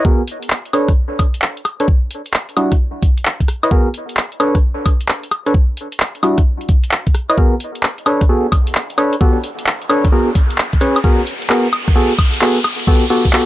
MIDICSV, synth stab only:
0, 0, Header, 1, 2, 480
1, 0, Start_track
1, 0, Tempo, 458015
1, 50, Time_signature, 4, 2, 24, 8
1, 14102, End_track
2, 0, Start_track
2, 0, Title_t, "Synth stab"
2, 0, Program_c, 0, 62
2, 49, Note_on_c, 0, 59, 91
2, 49, Note_on_c, 0, 70, 93
2, 50, Note_on_c, 0, 66, 78
2, 50, Note_on_c, 0, 68, 77
2, 233, Note_off_c, 0, 59, 0
2, 233, Note_off_c, 0, 66, 0
2, 233, Note_off_c, 0, 68, 0
2, 233, Note_off_c, 0, 70, 0
2, 769, Note_on_c, 0, 62, 89
2, 769, Note_on_c, 0, 69, 87
2, 769, Note_on_c, 0, 73, 105
2, 770, Note_on_c, 0, 71, 87
2, 953, Note_off_c, 0, 62, 0
2, 953, Note_off_c, 0, 69, 0
2, 953, Note_off_c, 0, 71, 0
2, 953, Note_off_c, 0, 73, 0
2, 1887, Note_on_c, 0, 62, 83
2, 1887, Note_on_c, 0, 69, 78
2, 1887, Note_on_c, 0, 71, 75
2, 1887, Note_on_c, 0, 73, 90
2, 1960, Note_off_c, 0, 62, 0
2, 1960, Note_off_c, 0, 69, 0
2, 1960, Note_off_c, 0, 71, 0
2, 1960, Note_off_c, 0, 73, 0
2, 2689, Note_on_c, 0, 62, 86
2, 2689, Note_on_c, 0, 64, 81
2, 2689, Note_on_c, 0, 66, 105
2, 2690, Note_on_c, 0, 55, 94
2, 2873, Note_off_c, 0, 55, 0
2, 2873, Note_off_c, 0, 62, 0
2, 2873, Note_off_c, 0, 64, 0
2, 2873, Note_off_c, 0, 66, 0
2, 3807, Note_on_c, 0, 64, 85
2, 3807, Note_on_c, 0, 71, 78
2, 3807, Note_on_c, 0, 73, 79
2, 3807, Note_on_c, 0, 75, 92
2, 3880, Note_off_c, 0, 64, 0
2, 3880, Note_off_c, 0, 71, 0
2, 3880, Note_off_c, 0, 73, 0
2, 3880, Note_off_c, 0, 75, 0
2, 3890, Note_on_c, 0, 66, 78
2, 3890, Note_on_c, 0, 68, 81
2, 3890, Note_on_c, 0, 70, 98
2, 3891, Note_on_c, 0, 59, 92
2, 4073, Note_off_c, 0, 70, 0
2, 4074, Note_off_c, 0, 59, 0
2, 4074, Note_off_c, 0, 66, 0
2, 4074, Note_off_c, 0, 68, 0
2, 4610, Note_on_c, 0, 62, 94
2, 4610, Note_on_c, 0, 71, 86
2, 4610, Note_on_c, 0, 73, 103
2, 4611, Note_on_c, 0, 69, 89
2, 4793, Note_off_c, 0, 62, 0
2, 4793, Note_off_c, 0, 71, 0
2, 4793, Note_off_c, 0, 73, 0
2, 4794, Note_off_c, 0, 69, 0
2, 5725, Note_on_c, 0, 69, 77
2, 5726, Note_on_c, 0, 62, 86
2, 5726, Note_on_c, 0, 71, 77
2, 5726, Note_on_c, 0, 73, 94
2, 5799, Note_off_c, 0, 69, 0
2, 5799, Note_off_c, 0, 71, 0
2, 5800, Note_off_c, 0, 62, 0
2, 5800, Note_off_c, 0, 73, 0
2, 6528, Note_on_c, 0, 55, 93
2, 6528, Note_on_c, 0, 62, 82
2, 6528, Note_on_c, 0, 64, 88
2, 6529, Note_on_c, 0, 66, 104
2, 6712, Note_off_c, 0, 55, 0
2, 6712, Note_off_c, 0, 62, 0
2, 6712, Note_off_c, 0, 64, 0
2, 6713, Note_off_c, 0, 66, 0
2, 7647, Note_on_c, 0, 64, 85
2, 7647, Note_on_c, 0, 71, 79
2, 7647, Note_on_c, 0, 73, 78
2, 7647, Note_on_c, 0, 75, 95
2, 7720, Note_off_c, 0, 64, 0
2, 7720, Note_off_c, 0, 71, 0
2, 7720, Note_off_c, 0, 73, 0
2, 7720, Note_off_c, 0, 75, 0
2, 7731, Note_on_c, 0, 59, 82
2, 7731, Note_on_c, 0, 66, 75
2, 7731, Note_on_c, 0, 68, 72
2, 7731, Note_on_c, 0, 70, 93
2, 7914, Note_off_c, 0, 59, 0
2, 7914, Note_off_c, 0, 66, 0
2, 7914, Note_off_c, 0, 68, 0
2, 7914, Note_off_c, 0, 70, 0
2, 8449, Note_on_c, 0, 62, 86
2, 8449, Note_on_c, 0, 69, 78
2, 8449, Note_on_c, 0, 71, 78
2, 8450, Note_on_c, 0, 73, 94
2, 8633, Note_off_c, 0, 62, 0
2, 8633, Note_off_c, 0, 69, 0
2, 8633, Note_off_c, 0, 71, 0
2, 8633, Note_off_c, 0, 73, 0
2, 8690, Note_on_c, 0, 59, 78
2, 8690, Note_on_c, 0, 66, 72
2, 8690, Note_on_c, 0, 68, 73
2, 8690, Note_on_c, 0, 69, 85
2, 8873, Note_off_c, 0, 59, 0
2, 8873, Note_off_c, 0, 66, 0
2, 8873, Note_off_c, 0, 68, 0
2, 8873, Note_off_c, 0, 69, 0
2, 9410, Note_on_c, 0, 62, 85
2, 9410, Note_on_c, 0, 69, 83
2, 9410, Note_on_c, 0, 71, 83
2, 9410, Note_on_c, 0, 73, 104
2, 9593, Note_off_c, 0, 62, 0
2, 9593, Note_off_c, 0, 69, 0
2, 9593, Note_off_c, 0, 71, 0
2, 9593, Note_off_c, 0, 73, 0
2, 9649, Note_on_c, 0, 59, 87
2, 9649, Note_on_c, 0, 66, 79
2, 9649, Note_on_c, 0, 67, 75
2, 9649, Note_on_c, 0, 69, 94
2, 9833, Note_off_c, 0, 59, 0
2, 9833, Note_off_c, 0, 66, 0
2, 9833, Note_off_c, 0, 67, 0
2, 9833, Note_off_c, 0, 69, 0
2, 10368, Note_on_c, 0, 71, 81
2, 10369, Note_on_c, 0, 62, 89
2, 10369, Note_on_c, 0, 69, 81
2, 10369, Note_on_c, 0, 73, 104
2, 10553, Note_off_c, 0, 62, 0
2, 10553, Note_off_c, 0, 69, 0
2, 10553, Note_off_c, 0, 71, 0
2, 10553, Note_off_c, 0, 73, 0
2, 10609, Note_on_c, 0, 59, 83
2, 10609, Note_on_c, 0, 66, 71
2, 10609, Note_on_c, 0, 68, 75
2, 10609, Note_on_c, 0, 70, 89
2, 10793, Note_off_c, 0, 59, 0
2, 10793, Note_off_c, 0, 66, 0
2, 10793, Note_off_c, 0, 68, 0
2, 10793, Note_off_c, 0, 70, 0
2, 11329, Note_on_c, 0, 61, 94
2, 11329, Note_on_c, 0, 68, 89
2, 11329, Note_on_c, 0, 71, 87
2, 11329, Note_on_c, 0, 73, 107
2, 11513, Note_off_c, 0, 61, 0
2, 11513, Note_off_c, 0, 68, 0
2, 11513, Note_off_c, 0, 71, 0
2, 11513, Note_off_c, 0, 73, 0
2, 11569, Note_on_c, 0, 59, 86
2, 11569, Note_on_c, 0, 70, 97
2, 11570, Note_on_c, 0, 66, 81
2, 11570, Note_on_c, 0, 68, 79
2, 11753, Note_off_c, 0, 59, 0
2, 11753, Note_off_c, 0, 66, 0
2, 11753, Note_off_c, 0, 68, 0
2, 11753, Note_off_c, 0, 70, 0
2, 12050, Note_on_c, 0, 59, 90
2, 12050, Note_on_c, 0, 68, 83
2, 12051, Note_on_c, 0, 66, 81
2, 12051, Note_on_c, 0, 70, 102
2, 12233, Note_off_c, 0, 59, 0
2, 12234, Note_off_c, 0, 66, 0
2, 12234, Note_off_c, 0, 68, 0
2, 12234, Note_off_c, 0, 70, 0
2, 12530, Note_on_c, 0, 59, 84
2, 12530, Note_on_c, 0, 66, 76
2, 12530, Note_on_c, 0, 68, 78
2, 12530, Note_on_c, 0, 69, 99
2, 12713, Note_off_c, 0, 59, 0
2, 12713, Note_off_c, 0, 66, 0
2, 12713, Note_off_c, 0, 68, 0
2, 12713, Note_off_c, 0, 69, 0
2, 13010, Note_on_c, 0, 68, 82
2, 13010, Note_on_c, 0, 69, 98
2, 13011, Note_on_c, 0, 59, 92
2, 13011, Note_on_c, 0, 66, 82
2, 13193, Note_off_c, 0, 66, 0
2, 13193, Note_off_c, 0, 68, 0
2, 13193, Note_off_c, 0, 69, 0
2, 13194, Note_off_c, 0, 59, 0
2, 13491, Note_on_c, 0, 59, 91
2, 13491, Note_on_c, 0, 66, 80
2, 13491, Note_on_c, 0, 67, 87
2, 13491, Note_on_c, 0, 69, 106
2, 13674, Note_off_c, 0, 59, 0
2, 13674, Note_off_c, 0, 66, 0
2, 13674, Note_off_c, 0, 67, 0
2, 13674, Note_off_c, 0, 69, 0
2, 13730, Note_on_c, 0, 59, 92
2, 13730, Note_on_c, 0, 69, 97
2, 13731, Note_on_c, 0, 66, 84
2, 13731, Note_on_c, 0, 67, 81
2, 13913, Note_off_c, 0, 59, 0
2, 13913, Note_off_c, 0, 69, 0
2, 13914, Note_off_c, 0, 66, 0
2, 13914, Note_off_c, 0, 67, 0
2, 13971, Note_on_c, 0, 59, 98
2, 13971, Note_on_c, 0, 66, 90
2, 13971, Note_on_c, 0, 67, 85
2, 13971, Note_on_c, 0, 69, 109
2, 14102, Note_off_c, 0, 59, 0
2, 14102, Note_off_c, 0, 66, 0
2, 14102, Note_off_c, 0, 67, 0
2, 14102, Note_off_c, 0, 69, 0
2, 14102, End_track
0, 0, End_of_file